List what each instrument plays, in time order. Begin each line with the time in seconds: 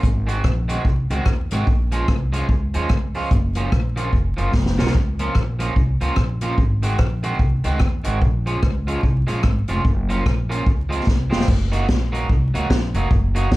0.03 upright bass G#1, kick, hi-hat pedal
0.27 clean electric guitar D#3 G#3 C4 F#4, closed hi-hat
0.44 upright bass A#1, kick, cross-stick
0.68 clean electric guitar D#3 G#3 C4 F#4, closed hi-hat
0.85 upright bass C2, kick
1.10 upright bass C#2, clean electric guitar D#3 G#3 C4 F#4, closed hi-hat
1.25 upright bass D#2, kick, cross-stick
1.51 upright bass G#1, clean electric guitar D#3 G#3 C4 F#4, closed hi-hat
1.67 upright bass A#1, kick
1.92 clean electric guitar F3 G#3 C#4 F4, closed hi-hat
2.08 upright bass C2, kick, cross-stick
2.32 clean electric guitar F3 G#3 C#4 F4, closed hi-hat
2.49 upright bass C#2, kick
2.74 upright bass D#2, clean electric guitar F3 G#3 C#4 F4, closed hi-hat
2.89 upright bass C#2, kick, cross-stick
3.14 clean electric guitar F3 G#3 C#4 F4, open hi-hat
3.31 upright bass F#1, kick, hi-hat pedal
3.55 clean electric guitar F3 A#3 C#4 F4, closed hi-hat
3.72 upright bass A#1, kick, cross-stick
3.96 clean electric guitar F3 A#3 C#4 F4, closed hi-hat
4.13 upright bass F1, kick
4.37 upright bass F#1, clean electric guitar F3 A#3 C#4 F4, closed hi-hat
4.54 upright bass F1, kick, snare
4.66 snare
4.78 upright bass C2, clean electric guitar F3 A#3 C#4 F4, snare
4.86 snare
4.95 upright bass C#2, kick
5.19 clean electric guitar F3 A#3 C#4 F4, closed hi-hat
5.35 upright bass A#1, kick, cross-stick
5.59 clean electric guitar F3 A#3 C#4 F4, closed hi-hat
5.76 upright bass C2, kick
6.01 upright bass C#2, clean electric guitar F3 A#3 C#4 F4, closed hi-hat
6.16 upright bass A#1, kick, cross-stick
6.41 clean electric guitar F3 A#3 C#4 F4, closed hi-hat
6.58 upright bass G#1, kick
6.83 clean electric guitar D#3 G#3 C4 F#4, closed hi-hat
6.99 upright bass A#1, kick, cross-stick
7.23 clean electric guitar D#3 G#3 C4 F#4, closed hi-hat
7.39 upright bass C2, kick
7.64 upright bass C#2, clean electric guitar D#3 G#3 C4 F#4, closed hi-hat
7.79 upright bass D#2, kick, cross-stick
8.04 upright bass G#1, clean electric guitar D#3 G#3 C4 F#4, closed hi-hat
8.22 upright bass A#1, kick
8.46 clean electric guitar F3 G#3 C#4 F4, closed hi-hat
8.62 upright bass C#2, kick, cross-stick
8.87 clean electric guitar F3 G#3 C#4 F4, closed hi-hat
9.03 upright bass C2, kick
9.27 upright bass A#1, clean electric guitar F3 G#3 C#4 F4, closed hi-hat
9.43 upright bass G#1, kick, cross-stick
9.68 upright bass F1, clean electric guitar F3 G#3 C#4 F4, closed hi-hat
9.85 upright bass F#1, kick
10.09 clean electric guitar F3 A#3 C#4 F4, closed hi-hat
10.26 upright bass A#1, kick, cross-stick
10.49 clean electric guitar F3 A#3 C#4 F4, closed hi-hat
10.66 upright bass C#2, kick
10.89 clean electric guitar F3 G#3 C4 F4, closed hi-hat
11.07 upright bass C2, kick, snare
11.30 upright bass F1, clean electric guitar F3 G#3 C4 F4, snare
11.40 snare
11.48 upright bass F#1, kick, crash
11.72 clean electric guitar F#3 A#3 D#4 F#4, closed hi-hat
11.89 upright bass A#1, kick, snare
12.12 clean electric guitar F#3 A#3 D#4 F#4, closed hi-hat
12.29 upright bass C2, kick
12.54 upright bass C#2, clean electric guitar F#3 A#3 D#4 F#4, closed hi-hat
12.70 upright bass A#1, kick, snare
12.94 upright bass F1, clean electric guitar F#3 A#3 D#4 F#4, closed hi-hat
13.11 upright bass F#1, kick
13.35 clean electric guitar F#3 A#3 D#4 F#4, closed hi-hat
13.51 upright bass A#1, kick, snare